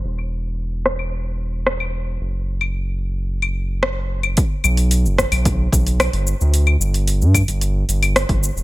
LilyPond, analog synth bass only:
\new Staff \with { instrumentName = "Analog synth bass" } { \clef bass \time 4/4 \key b \minor \tempo 4 = 111 e,,1 | fis,,1 | r8 b,,8. fis,,8 b,,8. b,,8. g,,8 d,16~ | d,8 g,,8. g,8 g,,8. g,,8. g,,8 e,,16 | }